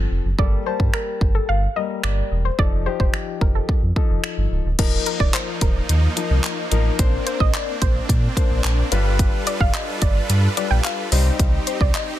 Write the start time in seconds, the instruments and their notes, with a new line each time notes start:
Already playing: grand piano F3 C4 A4
0.11 sub bass F1
0.25 sub bass F#1
0.38 sub bass G1, grand piano G3 A#3 A4, synth pluck D5, kick
0.66 grand piano G3 A#3 A5, synth pluck C5
0.80 sub bass G2, kick
0.94 synth pluck A#4, finger snap
1.21 sub bass G1, kick
1.35 synth pluck A4
1.49 sub bass G1, synth pluck F5
1.76 grand piano G3 A#3 A#4, synth pluck D#5
2.04 sub bass G1, synth pluck D5, finger snap
2.31 sub bass E1
2.45 synth pluck C5
2.58 sub bass F1, grand piano F3 D#4 A4, synth pluck D5, kick
2.86 grand piano F3 D#4 G4, synth pluck C5
3.00 sub bass F1, synth pluck C5, kick
3.14 finger snap
3.41 sub bass F1, synth pluck A#4, kick
3.55 synth pluck A4
3.69 sub bass F2, kick
3.82 sub bass F2
3.96 grand piano F3 D#4 A4, kick
4.10 sub bass F1
4.24 finger snap
4.37 sub bass G1
4.51 sub bass C#1
4.65 sub bass D1
4.79 sub bass D#1, grand piano F3 D#4 A#4, supersaw synth F3 A#3 D#4, kick, closed hi-hat, crash
5.06 synth pluck A#4, closed hi-hat
5.20 sub bass D#1, synth pluck D5, kick
5.34 synth pluck C5, clap, closed hi-hat
5.61 sub bass D#1, synth pluck A#4, kick, closed hi-hat
5.89 sub bass D#2, closed hi-hat
6.16 grand piano F3 D#4 A#4, closed hi-hat
6.30 sub bass C2
6.44 clap, closed hi-hat
6.71 sub bass A1, grand piano F3 D#4 A#4, closed hi-hat
6.99 sub bass A#1, grand piano A#3 D4 C5, supersaw synth C4 D4, kick, closed hi-hat
7.27 synth pluck C5, closed hi-hat
7.40 sub bass A#1, synth pluck D#5, kick
7.54 synth pluck D5, clap, closed hi-hat
7.81 sub bass A#1, synth pluck C5, kick, closed hi-hat
8.09 sub bass A#2, kick, closed hi-hat
8.37 grand piano A#3 D4 C5, kick, closed hi-hat
8.51 sub bass A#1
8.64 sub bass A#1, clap, closed hi-hat
8.92 sub bass G1, grand piano G3 F4 B4, supersaw synth G3 F4 A4 B4, closed hi-hat
9.19 kick, closed hi-hat
9.47 synth pluck D5, closed hi-hat
9.60 sub bass G1, synth pluck F5, kick
9.74 synth pluck D#5, clap, closed hi-hat
10.02 sub bass G1, synth pluck D5, kick, closed hi-hat
10.29 sub bass G2, closed hi-hat
10.57 grand piano G3 F4 B4, synth pluck D5, closed hi-hat
10.71 sub bass A#1, synth pluck G5
10.84 synth pluck F5, clap, closed hi-hat
11.12 sub bass C2, grand piano G3 D#4 C5, supersaw synth C4 D#4 G4, synth pluck D#5, open hi-hat
11.40 sub bass C2, kick, closed hi-hat
11.67 synth pluck C5, closed hi-hat
11.81 sub bass C2, synth pluck D5, kick
11.95 synth pluck D#5, clap, closed hi-hat